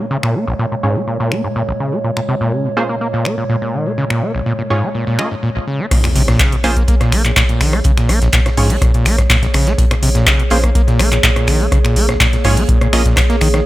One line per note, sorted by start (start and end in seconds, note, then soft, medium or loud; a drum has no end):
0.00 5.87 A#2 medium
0.00 5.87 G#3 medium
0.00 5.87 C#5 medium
0.11 0.18 C#3 loud
0.23 0.36 A#2 medium
0.23 finger snap medium
0.35 0.45 A#3 loud
0.47 0.54 A#1 loud
0.59 0.66 A#2 loud
0.72 0.75 A#2 medium
0.83 0.97 G#2 medium
0.83 0.92 C#4 medium
0.83 0.92 F4 medium
0.83 0.92 G#4 medium
0.83 0.92 C#5 medium
0.96 1.02 A#3 medium
1.07 1.18 A#2 medium
1.20 1.33 A#2 loud
1.32 1.42 A#3 loud
1.32 finger snap medium
1.44 1.48 G#2 medium
1.56 1.63 A#2 medium
1.68 1.72 A#1 loud
1.80 1.94 C#3 medium
1.93 1.99 A#3 medium
2.04 2.11 A#2 medium
2.17 2.21 A#2 medium
2.17 finger snap medium
2.28 2.35 C3 loud
2.41 2.54 A#2 loud
2.53 2.67 C#3 medium
2.65 2.69 A#2 medium
2.77 2.84 A#3 medium
2.77 2.86 C#4 medium
2.77 2.86 F4 medium
2.77 2.86 G#4 medium
2.77 2.86 C5 loud
2.89 2.96 A#3 medium
3.01 3.08 A#3 medium
3.14 3.27 A#2 loud
3.25 3.36 A#3 loud
3.25 finger snap medium
3.38 3.44 A#2 medium
3.49 3.56 A#2 loud
3.62 3.75 A#2 medium
3.74 3.88 D#3 loud
3.86 3.93 A#3 medium
3.98 4.05 C#3 loud
4.10 4.23 A#2 medium
4.10 finger snap medium
4.22 4.32 A#3 loud
4.35 4.41 A#1 loud
4.46 4.53 A#2 loud
4.59 4.63 A#2 medium
4.70 4.84 G#2 medium
4.70 4.79 C#4 medium
4.70 4.79 F4 medium
4.70 4.79 G#4 medium
4.70 4.79 C#5 medium
4.83 4.89 A#3 medium
4.95 5.05 A#2 medium
5.07 5.20 A#2 loud
5.19 5.29 A#3 loud
5.19 5.28 C#4 medium
5.19 5.28 F4 medium
5.19 5.28 G#4 medium
5.19 5.28 D#5 medium
5.19 finger snap medium
5.31 5.35 G#2 medium
5.43 5.50 A#2 loud
5.56 5.59 A#1 loud
5.67 5.81 C#3 medium
5.80 5.86 A#3 medium
5.91 5.98 A#2 medium
5.91 13.66 A#3 medium
5.91 13.66 G#4 medium
5.91 13.64 C#5 medium
5.91 kick loud
5.91 cross-stick medium
5.91 closed hi-hat loud
5.91 closed hi-hat medium
5.91 crash loud
5.91 impact medium
6.04 6.08 A#2 medium
6.04 finger snap medium
6.04 snare soft
6.04 closed hi-hat soft
6.15 6.36 A#1 loud
6.15 6.22 C3 loud
6.15 closed hi-hat medium
6.15 open hi-hat loud
6.28 6.41 A#2 loud
6.28 cross-stick medium
6.28 snare medium
6.28 closed hi-hat soft
6.39 6.54 C#3 medium
6.39 kick loud
6.39 snare loud
6.39 clap loud
6.39 closed hi-hat medium
6.52 6.56 A#2 medium
6.52 closed hi-hat soft
6.64 6.85 A#1 medium
6.64 6.71 A#3 loud
6.64 6.73 C#4 medium
6.64 6.73 F4 medium
6.64 6.73 G#4 medium
6.64 6.73 C5 loud
6.64 cross-stick medium
6.64 snare medium
6.64 closed hi-hat medium
6.64 open hi-hat medium
6.76 6.83 A#3 medium
6.76 kick medium
6.76 closed hi-hat medium
6.88 6.95 A#3 medium
6.88 kick loud
6.88 closed hi-hat medium
7.00 7.14 A#2 loud
7.00 cross-stick medium
7.00 snare soft
7.00 closed hi-hat soft
7.12 7.33 A#1 medium
7.12 7.23 A#3 loud
7.12 finger snap medium
7.12 closed hi-hat medium
7.12 open hi-hat loud
7.25 7.31 A#2 medium
7.25 clap soft
7.25 closed hi-hat medium
7.36 7.43 A#2 loud
7.36 kick loud
7.36 cross-stick medium
7.36 snare loud
7.36 clap loud
7.36 closed hi-hat medium
7.49 7.62 A#2 medium
7.49 closed hi-hat soft
7.60 7.81 A#1 medium
7.60 7.75 D#3 loud
7.60 finger snap medium
7.60 snare medium
7.60 closed hi-hat medium
7.60 open hi-hat medium
7.73 7.80 A#3 medium
7.73 cross-stick medium
7.73 closed hi-hat soft
7.84 7.92 C#3 loud
7.84 kick loud
7.84 closed hi-hat medium
7.97 8.11 A#2 loud
7.97 finger snap medium
7.97 snare soft
7.97 closed hi-hat soft
8.09 8.30 A#1 medium
8.09 8.19 A#3 loud
8.09 cross-stick medium
8.09 closed hi-hat medium
8.09 open hi-hat loud
8.22 8.28 A#1 loud
8.22 snare medium
8.22 closed hi-hat soft
8.33 8.40 A#2 loud
8.33 kick loud
8.33 snare loud
8.33 clap loud
8.33 closed hi-hat medium
8.46 8.50 A#2 medium
8.46 cross-stick medium
8.46 snare medium
8.46 closed hi-hat soft
8.57 8.78 A#1 medium
8.57 8.71 G#2 loud
8.57 8.67 C#4 medium
8.57 8.67 F4 medium
8.57 8.67 G#4 medium
8.57 8.67 C#5 medium
8.57 open hi-hat medium
8.57 open hi-hat loud
8.70 8.76 A#3 medium
8.70 closed hi-hat medium
8.82 8.92 A#2 medium
8.82 kick loud
8.82 cross-stick medium
8.82 closed hi-hat medium
8.94 9.07 A#2 loud
8.94 closed hi-hat soft
9.05 9.26 A#1 medium
9.05 9.16 A#3 loud
9.05 finger snap medium
9.05 snare soft
9.05 closed hi-hat medium
9.05 open hi-hat loud
9.18 9.22 G#2 medium
9.18 kick medium
9.18 cross-stick medium
9.18 snare soft
9.18 closed hi-hat medium
9.30 9.37 A#2 loud
9.30 kick loud
9.30 snare loud
9.30 clap loud
9.30 closed hi-hat medium
9.43 9.46 A#1 loud
9.43 snare medium
9.43 closed hi-hat soft
9.54 9.75 A#1 medium
9.54 9.68 C#3 medium
9.54 finger snap medium
9.54 cross-stick medium
9.54 closed hi-hat medium
9.54 open hi-hat medium
9.67 9.73 A#3 medium
9.67 snare medium
9.67 closed hi-hat soft
9.78 9.85 A#2 medium
9.78 kick loud
9.78 closed hi-hat medium
9.91 9.95 A#2 medium
9.91 finger snap medium
9.91 cross-stick medium
9.91 snare soft
9.91 closed hi-hat soft
10.02 10.23 A#1 medium
10.02 10.09 C3 loud
10.02 closed hi-hat medium
10.02 open hi-hat loud
10.15 10.28 A#2 loud
10.15 snare medium
10.15 closed hi-hat soft
10.27 10.41 C#3 medium
10.27 kick loud
10.27 cross-stick medium
10.27 snare loud
10.27 clap loud
10.27 closed hi-hat medium
10.39 10.43 A#2 medium
10.39 closed hi-hat soft
10.50 10.72 A#1 medium
10.50 10.58 A#3 loud
10.50 10.60 C#4 loud
10.50 10.60 F4 medium
10.50 10.60 G#4 medium
10.50 10.60 C5 loud
10.50 snare medium
10.50 closed hi-hat medium
10.50 open hi-hat loud
10.63 10.70 A#3 medium
10.63 kick medium
10.63 cross-stick medium
10.63 closed hi-hat soft
10.75 10.82 A#3 medium
10.75 kick loud
10.75 closed hi-hat medium
10.88 11.01 A#2 loud
10.88 snare soft
10.88 closed hi-hat soft
10.99 11.20 A#1 medium
10.99 11.10 A#3 loud
10.99 finger snap medium
10.99 cross-stick medium
10.99 closed hi-hat medium
10.99 open hi-hat loud
11.12 11.18 A#2 medium
11.12 clap soft
11.12 closed hi-hat soft
11.24 11.30 A#2 loud
11.24 kick loud
11.24 snare loud
11.24 clap loud
11.24 closed hi-hat medium
11.36 11.49 A#2 medium
11.36 cross-stick medium
11.36 closed hi-hat soft
11.47 11.68 A#1 loud
11.47 11.62 D#3 loud
11.47 finger snap medium
11.47 snare medium
11.47 closed hi-hat medium
11.47 open hi-hat medium
11.60 11.67 A#3 medium
11.60 closed hi-hat soft
11.72 11.79 C#3 loud
11.72 kick loud
11.72 cross-stick medium
11.72 closed hi-hat medium
11.84 11.98 A#2 loud
11.84 finger snap medium
11.84 snare soft
11.84 closed hi-hat soft
11.96 12.17 A#1 loud
11.96 12.07 A#3 loud
11.96 closed hi-hat medium
11.96 open hi-hat loud
12.09 12.15 A#1 loud
12.09 cross-stick medium
12.09 snare soft
12.09 closed hi-hat soft
12.20 12.27 A#2 loud
12.20 kick loud
12.20 snare loud
12.20 clap loud
12.20 closed hi-hat medium
12.33 12.37 A#2 medium
12.33 snare medium
12.33 closed hi-hat soft
12.44 12.65 A#1 medium
12.44 12.59 G#2 loud
12.44 12.54 C#4 medium
12.44 12.54 F4 medium
12.44 12.54 G#4 medium
12.44 12.54 C#5 medium
12.44 cross-stick medium
12.44 open hi-hat medium
12.44 open hi-hat loud
12.57 12.64 A#3 medium
12.57 closed hi-hat medium
12.69 12.79 A#2 medium
12.69 kick loud
12.69 closed hi-hat medium
12.81 12.88 A#2 loud
12.81 cross-stick medium
12.81 closed hi-hat soft
12.93 13.14 A#1 medium
12.93 13.03 A#3 medium
12.93 13.02 C#4 medium
12.93 13.02 F4 medium
12.93 13.02 G#4 medium
12.93 13.02 D#5 medium
12.93 finger snap medium
12.93 snare medium
12.93 closed hi-hat medium
12.93 open hi-hat loud
13.05 13.15 A#2 loud
13.05 kick medium
13.05 snare soft
13.05 closed hi-hat soft
13.16 13.21 A#2 medium
13.16 kick loud
13.16 cross-stick medium
13.16 snare loud
13.16 clap loud
13.16 closed hi-hat medium
13.16 closed hi-hat loud
13.30 13.36 A#3 loud
13.30 snare medium
13.30 closed hi-hat soft
13.41 13.62 A#1 medium
13.41 13.48 D#3 loud
13.41 finger snap medium
13.41 closed hi-hat medium
13.41 open hi-hat loud
13.54 13.60 D#3 medium
13.54 cross-stick medium
13.54 snare medium
13.54 closed hi-hat soft